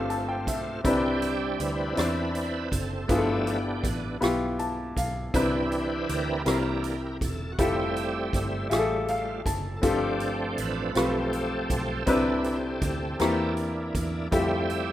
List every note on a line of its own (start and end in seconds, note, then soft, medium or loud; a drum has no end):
0.00 0.47 G1 medium
0.00 0.81 G2 medium
0.00 0.81 A3 soft
0.00 0.59 C4 medium
0.00 0.81 C4 soft
0.00 0.60 F4 medium
0.00 0.81 F4 soft
0.00 0.60 G4 medium
0.00 0.60 A4 medium
0.10 0.27 A5 medium
0.10 closed hi-hat soft
0.28 0.46 G5 soft
0.47 0.82 B1 medium
0.47 0.82 E5 soft
0.47 kick medium
0.47 closed hi-hat medium
0.84 1.56 C2 medium
0.84 1.93 C3 soft
0.84 1.94 G3 medium
0.84 1.72 C4 medium
0.84 3.05 C4 soft
0.84 1.72 D4 medium
0.84 1.59 D4 soft
0.84 1.72 E4 medium
0.84 1.59 E4 medium
0.84 1.62 G4 medium
0.84 1.73 B4 medium
0.84 kick medium
0.84 closed hi-hat medium
1.22 closed hi-hat soft
1.59 1.94 D2 medium
1.59 2.68 D4 medium
1.59 2.68 E4 medium
1.59 2.75 B4 medium
1.59 closed hi-hat medium
1.96 2.68 E2 medium
1.96 2.84 C4 medium
1.96 2.84 D4 soft
1.96 2.85 E4 soft
1.96 2.85 D5 medium
1.96 cross-stick medium
1.96 closed hi-hat medium
2.35 closed hi-hat soft
2.71 3.06 F#1 medium
2.71 3.10 A4 medium
2.71 kick medium
2.71 closed hi-hat medium
3.08 3.80 G1 medium
3.08 4.18 G2 soft
3.08 3.58 F3 soft
3.08 3.58 A3 soft
3.08 4.17 B3 soft
3.08 3.96 B3 medium
3.08 4.17 D4 soft
3.08 3.97 E4 medium
3.08 3.97 F4 medium
3.08 3.89 G4 medium
3.08 3.16 G#4 soft
3.08 3.59 E5 medium
3.08 kick medium
3.08 closed hi-hat medium
3.17 4.01 A4 medium
3.47 closed hi-hat soft
3.84 4.18 A1 medium
3.84 kick medium
3.84 closed hi-hat medium
4.21 4.93 B1 medium
4.21 5.08 B3 medium
4.21 5.09 E4 medium
4.21 5.09 F4 medium
4.21 5.10 G4 medium
4.21 cross-stick medium
4.21 closed hi-hat medium
4.59 4.94 A5 medium
4.59 closed hi-hat soft
4.97 5.31 B1 medium
4.97 5.32 F5 medium
4.97 kick medium
4.97 closed hi-hat medium
5.34 6.05 C2 medium
5.34 6.42 C3 soft
5.34 6.42 E3 soft
5.34 6.21 C4 medium
5.34 6.43 C4 medium
5.34 6.21 D4 soft
5.34 6.43 D4 soft
5.34 6.22 E4 soft
5.34 6.09 E4 soft
5.34 6.05 G4 medium
5.34 6.43 B4 soft
5.34 6.22 B4 medium
5.34 kick medium
5.34 closed hi-hat medium
5.72 closed hi-hat soft
6.09 6.44 D2 medium
6.09 7.18 E4 medium
6.09 7.17 G4 medium
6.09 7.17 A#4 medium
6.09 closed hi-hat medium
6.45 7.17 C2 medium
6.45 7.54 C3 soft
6.45 6.96 E3 soft
6.45 6.97 A#3 soft
6.45 7.33 C4 soft
6.45 6.97 D4 soft
6.45 7.34 E4 soft
6.45 7.34 G4 soft
6.45 7.34 A#4 medium
6.45 cross-stick medium
6.45 closed hi-hat medium
6.84 closed hi-hat soft
7.21 7.56 E1 medium
7.21 7.53 A4 medium
7.21 kick medium
7.21 closed hi-hat medium
7.52 7.59 F#4 soft
7.58 8.29 F1 medium
7.58 9.07 G3 soft
7.58 9.07 A3 soft
7.58 8.68 C4 soft
7.58 8.46 E4 medium
7.58 8.46 F4 medium
7.58 8.46 G4 medium
7.58 8.40 G4 medium
7.58 8.47 A4 medium
7.58 8.67 E5 soft
7.58 kick medium
7.58 closed hi-hat medium
7.96 closed hi-hat soft
8.33 8.68 G1 medium
8.33 kick medium
8.33 cross-stick soft
8.33 closed hi-hat medium
8.70 9.42 A1 medium
8.70 9.58 F4 medium
8.70 9.58 G4 medium
8.70 8.78 G#4 medium
8.70 9.57 E5 medium
8.70 cross-stick medium
8.70 closed hi-hat medium
8.78 9.62 A4 medium
9.08 9.42 G3 soft
9.08 9.42 A3 soft
9.08 9.42 F4 soft
9.08 9.44 F5 medium
9.08 closed hi-hat soft
9.46 9.80 F#1 medium
9.46 9.81 A5 soft
9.46 kick medium
9.46 closed hi-hat medium
9.77 9.83 A4 soft
9.82 10.54 G1 medium
9.82 10.91 G2 soft
9.82 12.03 F3 soft
9.82 12.03 A3 soft
9.82 10.70 C4 medium
9.82 10.92 C4 medium
9.82 10.92 D4 medium
9.82 10.70 F4 medium
9.82 10.70 G4 medium
9.82 10.54 G4 medium
9.82 10.71 A4 medium
9.82 kick medium
9.82 closed hi-hat medium
10.20 closed hi-hat soft
10.58 10.92 A1 medium
10.58 10.97 B4 medium
10.58 closed hi-hat medium
10.95 11.66 B1 medium
10.95 11.82 C4 medium
10.95 13.53 C4 soft
10.95 11.83 F4 soft
10.95 11.83 G4 soft
10.95 13.54 G4 soft
10.95 13.54 A4 medium
10.95 11.83 B4 medium
10.95 cross-stick medium
10.95 closed hi-hat medium
11.33 closed hi-hat soft
11.70 12.04 B1 medium
11.70 kick medium
11.70 closed hi-hat medium
12.06 12.78 C2 medium
12.06 13.16 C3 medium
12.06 12.94 C4 medium
12.06 12.95 D4 medium
12.06 12.58 D4 medium
12.06 12.95 E4 medium
12.06 12.58 E4 soft
12.06 12.57 B4 soft
12.06 12.95 B4 medium
12.06 kick medium
12.06 closed hi-hat medium
12.44 closed hi-hat soft
12.82 13.16 D2 medium
12.82 kick medium
12.82 closed hi-hat medium
13.19 13.91 E2 medium
13.19 14.28 E3 medium
13.19 14.28 A#3 soft
13.19 14.07 A#3 medium
13.19 14.07 C4 soft
13.19 14.28 D4 soft
13.19 14.28 E4 soft
13.19 14.07 E4 medium
13.19 14.08 G4 medium
13.19 cross-stick medium
13.19 closed hi-hat medium
13.57 closed hi-hat soft
13.95 14.29 E2 medium
13.95 kick medium
13.95 closed hi-hat medium
14.31 14.92 F2 medium
14.31 14.92 G3 soft
14.31 14.92 A3 medium
14.31 14.92 A3 soft
14.31 14.92 C4 soft
14.31 14.92 E4 medium
14.31 14.92 F4 soft
14.31 14.92 G4 medium
14.31 14.92 E5 soft
14.31 kick medium
14.31 closed hi-hat medium
14.70 closed hi-hat soft